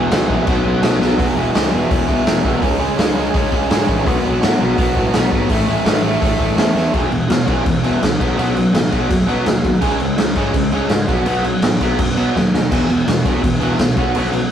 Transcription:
Already playing: E3 B3
0.11 C#2 E2 B2 E3, snare, crash
0.28 A#1 E2 B2 E3, kick
0.46 B1 B2 F#3 B3, kick, crash
0.65 B1
0.82 B1 B2 F#3 B3, snare, crash
1.00 B1 B2 F#3 B3, snare
1.18 E1 E2 B2 E3, kick, open hi-hat
1.36 E1 E2 B2 E3
1.53 C#2 E2 B2 E3, snare, open hi-hat
1.71 E1 E2 B2 E3
1.89 E1 E2 B2 E3, kick, open hi-hat
2.08 C#2 E2 B2 E3, kick
2.25 E1 E2 B2 E3, snare, open hi-hat
2.44 C2 E2 B2 E3, kick
2.61 C#2 C#3 G#3 C#4, kick, open hi-hat
2.79 C#3 G#3 C#4
2.97 C#2 C#3 G#3 C#4, snare, open hi-hat
3.15 C#2 C#3 G#3 C#4
3.33 C#2 C#3 G#3 C#4, kick, open hi-hat
3.51 C#2 C#3 G#3 C#4, kick
3.69 G#2 C#3 G#3 C#4, snare, open hi-hat
3.87 A1 C#3 G#3 C#4, kick
4.06 B1 B2 F#3 B3, kick, open hi-hat
4.24 B1 B2 F#3 B3
4.42 A2 B2 F#3 B3, snare, open hi-hat
4.60 B1 B2 F#3 B3
4.78 B1 B2 F#3 B3, kick, open hi-hat
4.96 A2 B2 F#3 B3, kick
5.13 B1 B2 F#3 B3, snare, open hi-hat
5.31 G#1 B2 F#3 B3, kick
5.49 A1 A2 E3 A3, kick, open hi-hat
5.68 A2 E3 A3
5.84 A1 A2 E3 A3, snare, open hi-hat
6.03 A1 A2 E3 A3
6.20 A1 A2 E3 A3, kick, open hi-hat
6.39 A1 A2 E3 A3, kick
6.57 E2 A2 E3 A3, snare, open hi-hat
6.74 E2 A2 E3 A3, snare
6.92 E1 E2 B2 E3, kick, crash
7.11 E1 E2 B2, crash
7.28 E1 E2 B2, snare, crash
7.45 B1 E2 B2 E3, kick, crash
7.65 E1 E2 B2, kick, crash
7.83 E1 E2 B2 E3, crash
8.01 C#2 E2 B2, snare, crash
8.19 B1 B2 F#3 B3, kick, crash
8.37 B1 B2 F#3 B3, crash
8.56 B2 F#3, crash
8.74 A1 B2 F#3, snare, crash
8.91 B1 B2 F#3 B3, kick, crash
9.09 F#1 B2 F#3, kick, crash
9.27 B2 F#3 B3, crash
9.45 D#2 B2 F#3, snare, crash
9.64 B2 F#3, kick, crash
9.81 C#2 C#3 G#3 C#4, kick, crash
9.99 C#2 C#3 G#3, crash
10.17 C#2 C#3 G#3, snare, crash
10.36 G#2 C#3 G#3 C#4, kick, crash
10.54 C#2 C#3 G#3, kick, crash
10.72 C#2 C#3 G#3 C#4, crash
10.89 G#2 C#3 G#3, snare, crash
11.08 B1 B2 F#3 B3, kick, crash
11.26 B1 B2 F#3 B3, crash
11.44 B2 F#3, crash
11.62 A1 B2 F#3, snare, crash
11.80 B1 B2 F#3 B3, kick, crash
11.98 F#1 B2 F#3, kick, crash
12.16 B2 F#3 B3, crash
12.35 D#2 B2 F#3, snare
12.53 B2 F#3, snare
12.70 E1 E2 B2 E3, kick, crash
12.89 E1 E2 B2, crash
13.06 E1 E2 B2, snare, crash
13.25 B1 E2 B2 E3, kick, crash
13.43 E1 E2 B2, kick, crash
13.60 E1 E2 B2 E3, crash
13.79 C#2 E2 B2, snare, crash
13.96 B1 B2 F#3 B3, kick, crash
14.15 B1 B2 F#3 B3, crash
14.33 B2 F#3, crash

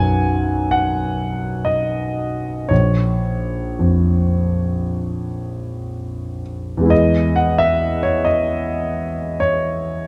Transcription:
Already playing: B1 F#2 F#5 G#5
0.71 F#5
1.65 D#5
2.69 A#1 C#5
3.79 F2
6.77 E2 G#3
6.83 B3 E4
6.88 G#4 D#5
7.36 F#5
7.58 E5
8.03 C#5
8.25 D#5
9.40 C#5

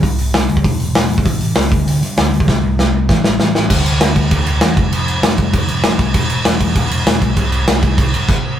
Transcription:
0.03 C2, kick, open hi-hat
0.18 C2, open hi-hat
0.34 C2, snare, open hi-hat
0.49 D2, open hi-hat
0.57 kick
0.64 E1, kick, open hi-hat
0.79 E1, open hi-hat
0.95 E1, snare, open hi-hat
1.10 E1, open hi-hat
1.18 kick
1.25 A1, kick, open hi-hat
1.41 A1, open hi-hat
1.55 C#2, snare, open hi-hat
1.72 D2, kick, open hi-hat
1.86 D2, open hi-hat
2.02 G2, open hi-hat
2.17 D2, snare, open hi-hat
2.32 D2, open hi-hat
2.40 kick
2.48 C2, kick, snare
2.63 C2
2.78 C2, snare
2.94 C2
3.09 A1, kick, snare
3.24 A1, snare
3.39 A1, snare
3.55 A1, snare
3.70 D2, kick, crash
3.86 crash
4.00 D2, snare, crash
4.16 kick, crash
4.31 D2, kick, crash
4.46 D2, crash
4.61 E2, snare, crash
4.77 F1, kick, crash
4.92 F1, crash
5.08 crash
5.23 F1, snare, crash
5.38 kick, crash
5.54 F1, kick, crash
5.68 F1, crash
5.83 F1, snare, crash
5.99 C2, kick, crash
6.14 E1, kick, crash
6.30 crash
6.45 E1, snare, crash
6.61 kick, crash
6.76 E1, kick, crash
6.91 E1, crash
7.06 E1, snare, crash
7.22 B1, kick, crash
7.37 C2, kick, crash
7.52 crash
7.68 C2, snare, crash
7.83 kick, crash
7.98 C2, kick, crash
8.13 F#1, crash
8.29 kick, crash

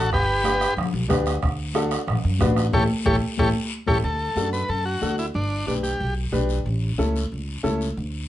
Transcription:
Already playing: A1 F#4 A4
0.12 G1 G4 B4, bombo low, bombo rim, high conga, long guiro
0.44 D4 G4 B4, bombo rim, high conga, short guiro
0.61 bombo rim, short guiro
0.77 D2, bombo rim, high conga, low conga, long guiro
0.93 B1
1.08 D2 D4 G4 B4, bombo low, bombo rim, high conga, short guiro
1.26 bombo rim, short guiro
1.42 D2, bombo low, bombo rim, long guiro
1.74 D4 F#4 A4, bombo rim, high conga, short guiro
1.91 bombo rim, short guiro
2.07 A1, bombo rim, high conga, low conga, long guiro
2.24 F#2
2.39 A1 D4 F#4 B4, bombo low, bombo rim, high conga, short guiro
2.56 bombo rim, short guiro
2.72 A1 E4 G4 A4 C#5, bombo low, high conga, long guiro
3.05 A1 E4 G4 A4 C#5, bombo low, high conga, long guiro
3.38 A1 E4 G4 A4 C#5, bombo low, high conga, long guiro
3.87 A1 E4 G4 A4 C#5, bombo low, high conga, long guiro
4.03 D2 A4, high conga, long guiro
4.35 F#2 D4 F#4 A4, high conga, short guiro
4.53 B4, short guiro
4.68 F#2 A4, high conga, long guiro
4.85 F#4
5.01 D2 D4 F#4 A4, high conga, short guiro
5.18 E4, short guiro
5.34 G1 D4, high conga, long guiro
5.67 B1 D4 G4 B4, high conga, short guiro
5.83 G4, short guiro
6.00 B1, high conga, long guiro
6.32 B1 D4 G4 B4, high conga, short guiro
6.49 short guiro
6.66 A1, high conga, long guiro
6.98 C#2 C#4 E4 A4, high conga, short guiro
7.16 short guiro
7.32 C#2, long guiro
7.63 C#2 C#4 E4 A4, high conga, short guiro
7.81 short guiro
7.97 D2, high conga, long guiro

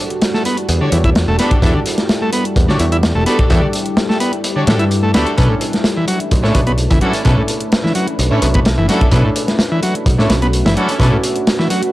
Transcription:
Already playing: G3 D4 E4 F#4 A4
0.10 closed hi-hat
0.22 snare, closed hi-hat
0.34 A3, snare
0.45 B3, closed hi-hat
0.57 closed hi-hat
0.69 E2, closed hi-hat
0.81 D3 D4 F#4 G4 C#5
0.92 E2 E3, closed hi-hat
1.04 E4, kick, closed hi-hat
1.15 snare, closed hi-hat
1.28 E1 A3
1.39 B3 D4 F#4 G4 A4, snare, closed hi-hat
1.51 kick, closed hi-hat
1.62 E2 E3 D4 F#4 G4 A4, kick, closed hi-hat
1.75 D3
1.86 closed hi-hat
1.98 snare, closed hi-hat
2.09 snare, closed hi-hat
2.22 A3
2.33 B3, closed hi-hat
2.45 closed hi-hat
2.56 E2, kick, closed hi-hat
2.68 D3 D4 F#4 G4 C#5, snare
2.79 E2 E3, closed hi-hat
2.92 E4, closed hi-hat
3.03 snare, closed hi-hat
3.15 E1 A3
3.26 B3 D4 F#4 G4 A4, closed hi-hat
3.39 kick, closed hi-hat
3.50 E2 E3 D4 F#4 G4 A4, kick, closed hi-hat
3.62 D3
3.73 closed hi-hat
3.75 closed hi-hat
3.86 closed hi-hat
3.97 snare, closed hi-hat
4.09 A3, snare
4.20 B3, closed hi-hat
4.33 closed hi-hat
4.44 closed hi-hat
4.56 D3 D4 F#4 G4 C#5
4.67 A2 E3 D4 F#4 G4 A4, snare, closed hi-hat
4.79 G2 E4, closed hi-hat
4.91 closed hi-hat
5.03 A3
5.14 D2 B3 D4 F#4 G4 A4, snare, closed hi-hat
5.27 closed hi-hat
5.37 B1 B2 A3 C#4 D4 E4 A4 B4, kick, closed hi-hat
5.50 A2
5.61 closed hi-hat
5.73 snare, closed hi-hat
5.84 snare, closed hi-hat
5.97 E3
6.08 F#3, closed hi-hat
6.20 closed hi-hat
6.31 B1, kick, closed hi-hat
6.43 A2 C#4 D4 E4 C#5, snare
6.55 B1 B2, kick, closed hi-hat
6.67 B3, closed hi-hat
6.78 closed hi-hat
6.90 F#1 E3, kick, closed hi-hat
7.01 F#3 C#4 D4 E4 A4, closed hi-hat
7.13 closed hi-hat
7.25 B1 B2 C#4 D4 E4 A4, kick, closed hi-hat
7.37 A2
7.48 closed hi-hat
7.60 closed hi-hat
7.72 snare, closed hi-hat
7.84 E3, snare
7.95 F#3, closed hi-hat
8.08 closed hi-hat
8.19 B1, closed hi-hat
8.31 A2 C#4 D4 E4 C#5
8.42 B1 B2, closed hi-hat
8.54 B3, kick, closed hi-hat
8.65 snare, closed hi-hat
8.78 F#1 E3
8.89 F#3 C#4 D4 E4 A4, snare, closed hi-hat
9.01 kick, closed hi-hat
9.11 B1 B2 C#4 D4 E4 F#4 A4, kick, closed hi-hat
9.25 A2
9.36 closed hi-hat
9.48 snare, closed hi-hat
9.59 snare, closed hi-hat
9.72 E3
9.83 F#3, closed hi-hat
9.95 closed hi-hat
10.06 B1, kick, closed hi-hat
10.18 A2 C#4 D4 E4 C#5, snare
10.30 B1 B2, snare, closed hi-hat
10.42 B3, closed hi-hat
10.53 closed hi-hat
10.66 F#1 E3, snare, closed hi-hat
10.77 F#3 C#4 D4 E4 A4, closed hi-hat
10.89 closed hi-hat
11.00 B1 B2 C#4 D4 E4 A4, kick, closed hi-hat
11.12 A2
11.24 closed hi-hat
11.36 closed hi-hat
11.47 snare, closed hi-hat
11.59 E3, snare
11.70 F#3, closed hi-hat
11.83 closed hi-hat

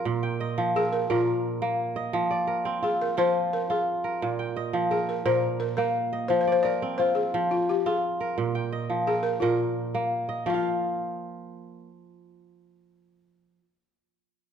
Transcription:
Already playing: F3 C4 F4 A#4
0.05 A#2
0.23 G5
0.40 D#5
0.58 F3
0.76 G#4 A#4
0.93 A#4
1.10 A#2 F4 A#4
1.62 A#3
1.96 D#5
2.13 F3
2.31 D5
2.47 A#4
2.65 C4
2.83 F4 G#4
3.01 A#4
3.17 F3 F4 C5
3.53 A#4
3.70 F4 G#4
4.04 A#4
4.22 A#2
4.39 G5
4.56 D#5
4.73 F3
4.91 G#4 A#4
5.09 A#4
5.25 A#2 A#4 C5
5.60 A#4
5.77 A#3 A#4
6.13 D#5
6.28 F3 C5
6.41 C5
6.47 D5
6.52 C5
6.63 A#4 D5
6.82 C4
6.98 F4 C5
7.15 G#4
7.34 F3
7.51 F4
7.69 G4
7.86 F4 G#4
8.21 A#4
8.38 A#2
8.55 G5
8.72 D#5
8.90 F3
9.07 G#4 A#4
9.23 A#4
9.40 A#2 F4 A#4
9.95 A#3
10.29 D#5
10.46 F3 F4
10.54 F5

